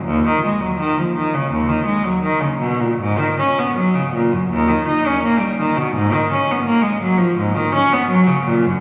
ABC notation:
X:1
M:4/4
L:1/16
Q:1/4=83
K:Ebm
V:1 name="Cello" clef=bass
E,, E, A, G, E, F, E, D, E,, E, A, G, E, D, C, B,, | A,, E, D C G, D, B,, G,, E,, E, E D B, =G, E, C, | A,, E, D C B, A, G, F, A,, E, D C G, D, B,, G,, |]